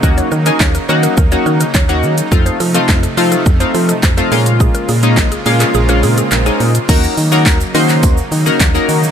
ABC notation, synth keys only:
X:1
M:4/4
L:1/16
Q:1/4=105
K:Ebdor
V:1 name="Synth keys"
[B,DEG]2 z [B,DEA]2 z [B,DEG]2 z [B,DEG]2 z2 [B,DEG]2 z | [=A,CEF]2 z [A,CEF]2 z [A,CEF]2 z [A,CEF]2 z2 [A,CEF] [_A,B,DF]2- | [A,B,DF]2 z [A,B,DE]2 z [A,B,DF]2 z [A,B,DF]2 z2 [A,B,DE]2 z | [B,DEGB]2 z [B,DEGB]2 z [B,DEGc]3 z2 [B,DEGB] z [B,DEGB]2 z |]